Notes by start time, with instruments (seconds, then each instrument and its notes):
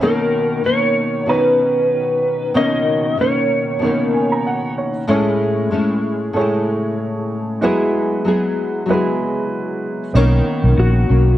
0.01 nylon-string guitar B2 D#3 A#3 C#4, upright piano B3 D#4 A#4 C#5, electric slide guitar A#4
0.64 nylon-string guitar B2 D#3 A#3 C#4, electric slide guitar C#5
1.26 nylon-string guitar B2 D#3, upright piano B3 D#4 C#5 A#5, electric slide guitar B4
1.34 nylon-string guitar C#4
2.54 nylon-string guitar B2 D#3 A#3 C#4, upright piano B3 D#4 A#4 C#5, electric slide guitar D#5
3.17 nylon-string guitar B2 D#3 A#3 C#4, electric slide guitar C#5
3.79 nylon-string guitar B2 D#3, upright piano B3 D#4 A#4
3.83 nylon-string guitar A#3 C#4, upright piano C#5
4.14 upright piano G#5
4.32 upright piano A#5
4.47 upright piano F#5
4.78 upright piano C#5
5.08 nylon-string guitar A2 G#3 C#4 E4, upright piano A3 E4 G#4 C#5
5.71 nylon-string guitar A2 G#3 C#4 E4
6.33 nylon-string guitar A2 G#3, upright piano A3 E4 G#4 C#5
6.39 nylon-string guitar C#4 E4
7.61 nylon-string guitar F#3 B3 E4 G#4, upright piano G#3 E4 F#4 B4
8.24 nylon-string guitar F#3 B3 E4 G#4
8.86 nylon-string guitar F#3 B3, upright piano G#3 E4 F#4
8.90 nylon-string guitar E4 G#4, upright piano B4
10.14 fingered electric bass B1, nylon-string guitar D#3 A#3 C#4, upright piano B3 D#4 A#4 C#5
10.64 fingered electric bass B1
10.78 fingered electric bass A#1, electric slide guitar F#4
11.09 fingered electric bass B1, nylon-string guitar D#3 A#3 C#4